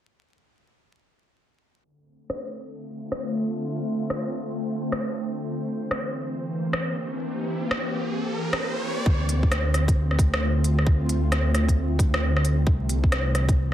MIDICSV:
0, 0, Header, 1, 5, 480
1, 0, Start_track
1, 0, Key_signature, -1, "minor"
1, 0, Tempo, 451128
1, 1965, Time_signature, 4, 2, 24, 8
1, 14617, End_track
2, 0, Start_track
2, 0, Title_t, "Ambient pad"
2, 0, Program_c, 0, 92
2, 1963, Note_on_c, 0, 50, 71
2, 2114, Note_on_c, 0, 57, 86
2, 2137, Note_on_c, 0, 60, 81
2, 2598, Note_on_c, 0, 65, 68
2, 3035, Note_on_c, 0, 72, 85
2, 5790, Note_on_c, 0, 52, 84
2, 5800, Note_off_c, 0, 65, 0
2, 5804, Note_off_c, 0, 50, 0
2, 5804, Note_off_c, 0, 57, 0
2, 6119, Note_on_c, 0, 58, 74
2, 6645, Note_on_c, 0, 67, 72
2, 9637, Note_off_c, 0, 52, 0
2, 9638, Note_on_c, 0, 50, 74
2, 9644, Note_off_c, 0, 58, 0
2, 9858, Note_on_c, 0, 57, 76
2, 10052, Note_on_c, 0, 65, 87
2, 11206, Note_off_c, 0, 67, 0
2, 13475, Note_on_c, 0, 52, 83
2, 13478, Note_off_c, 0, 57, 0
2, 13478, Note_off_c, 0, 65, 0
2, 13482, Note_off_c, 0, 50, 0
2, 13812, Note_on_c, 0, 58, 82
2, 13921, Note_on_c, 0, 67, 84
2, 14617, Note_off_c, 0, 52, 0
2, 14617, Note_off_c, 0, 58, 0
2, 14617, Note_off_c, 0, 60, 0
2, 14617, Note_off_c, 0, 67, 0
2, 14617, Note_off_c, 0, 72, 0
2, 14617, End_track
3, 0, Start_track
3, 0, Title_t, "Detuned saw bass"
3, 0, Program_c, 1, 39
3, 9640, Note_on_c, 1, 38, 84
3, 13465, Note_off_c, 1, 38, 0
3, 13476, Note_on_c, 1, 36, 89
3, 14617, Note_off_c, 1, 36, 0
3, 14617, End_track
4, 0, Start_track
4, 0, Title_t, "Riser"
4, 0, Program_c, 2, 103
4, 5806, Note_on_c, 2, 60, 70
4, 9645, Note_off_c, 2, 60, 0
4, 14617, End_track
5, 0, Start_track
5, 0, Title_t, "Drums"
5, 2444, Note_on_c, 9, 37, 92
5, 2551, Note_off_c, 9, 37, 0
5, 3318, Note_on_c, 9, 37, 90
5, 3424, Note_off_c, 9, 37, 0
5, 4363, Note_on_c, 9, 37, 93
5, 4470, Note_off_c, 9, 37, 0
5, 5239, Note_on_c, 9, 37, 100
5, 5345, Note_off_c, 9, 37, 0
5, 6288, Note_on_c, 9, 37, 102
5, 6394, Note_off_c, 9, 37, 0
5, 7164, Note_on_c, 9, 37, 100
5, 7270, Note_off_c, 9, 37, 0
5, 8203, Note_on_c, 9, 37, 105
5, 8309, Note_off_c, 9, 37, 0
5, 9076, Note_on_c, 9, 37, 100
5, 9183, Note_off_c, 9, 37, 0
5, 9640, Note_on_c, 9, 36, 109
5, 9747, Note_off_c, 9, 36, 0
5, 9884, Note_on_c, 9, 42, 52
5, 9990, Note_off_c, 9, 42, 0
5, 10034, Note_on_c, 9, 36, 57
5, 10124, Note_on_c, 9, 37, 100
5, 10124, Note_on_c, 9, 42, 31
5, 10141, Note_off_c, 9, 36, 0
5, 10231, Note_off_c, 9, 37, 0
5, 10231, Note_off_c, 9, 42, 0
5, 10365, Note_on_c, 9, 37, 63
5, 10365, Note_on_c, 9, 42, 54
5, 10471, Note_off_c, 9, 37, 0
5, 10471, Note_off_c, 9, 42, 0
5, 10514, Note_on_c, 9, 36, 101
5, 10520, Note_on_c, 9, 42, 32
5, 10620, Note_off_c, 9, 36, 0
5, 10626, Note_off_c, 9, 42, 0
5, 10758, Note_on_c, 9, 37, 36
5, 10839, Note_on_c, 9, 36, 99
5, 10845, Note_on_c, 9, 42, 53
5, 10864, Note_off_c, 9, 37, 0
5, 10945, Note_off_c, 9, 36, 0
5, 10951, Note_off_c, 9, 42, 0
5, 10998, Note_on_c, 9, 37, 97
5, 11104, Note_off_c, 9, 37, 0
5, 11324, Note_on_c, 9, 42, 54
5, 11431, Note_off_c, 9, 42, 0
5, 11477, Note_on_c, 9, 37, 50
5, 11561, Note_on_c, 9, 36, 117
5, 11583, Note_off_c, 9, 37, 0
5, 11667, Note_off_c, 9, 36, 0
5, 11802, Note_on_c, 9, 42, 53
5, 11908, Note_off_c, 9, 42, 0
5, 12043, Note_on_c, 9, 37, 106
5, 12043, Note_on_c, 9, 42, 30
5, 12150, Note_off_c, 9, 37, 0
5, 12150, Note_off_c, 9, 42, 0
5, 12283, Note_on_c, 9, 37, 65
5, 12283, Note_on_c, 9, 42, 53
5, 12390, Note_off_c, 9, 37, 0
5, 12390, Note_off_c, 9, 42, 0
5, 12433, Note_on_c, 9, 36, 61
5, 12438, Note_on_c, 9, 42, 31
5, 12539, Note_off_c, 9, 36, 0
5, 12544, Note_off_c, 9, 42, 0
5, 12759, Note_on_c, 9, 36, 101
5, 12764, Note_on_c, 9, 42, 53
5, 12865, Note_off_c, 9, 36, 0
5, 12871, Note_off_c, 9, 42, 0
5, 12917, Note_on_c, 9, 37, 102
5, 13023, Note_off_c, 9, 37, 0
5, 13158, Note_on_c, 9, 37, 62
5, 13243, Note_on_c, 9, 42, 54
5, 13264, Note_off_c, 9, 37, 0
5, 13350, Note_off_c, 9, 42, 0
5, 13477, Note_on_c, 9, 36, 118
5, 13584, Note_off_c, 9, 36, 0
5, 13719, Note_on_c, 9, 42, 52
5, 13825, Note_off_c, 9, 42, 0
5, 13871, Note_on_c, 9, 36, 60
5, 13961, Note_on_c, 9, 37, 105
5, 13961, Note_on_c, 9, 42, 30
5, 13977, Note_off_c, 9, 36, 0
5, 14067, Note_off_c, 9, 37, 0
5, 14067, Note_off_c, 9, 42, 0
5, 14203, Note_on_c, 9, 37, 62
5, 14203, Note_on_c, 9, 42, 54
5, 14309, Note_off_c, 9, 37, 0
5, 14309, Note_off_c, 9, 42, 0
5, 14349, Note_on_c, 9, 36, 103
5, 14354, Note_on_c, 9, 42, 31
5, 14456, Note_off_c, 9, 36, 0
5, 14461, Note_off_c, 9, 42, 0
5, 14617, End_track
0, 0, End_of_file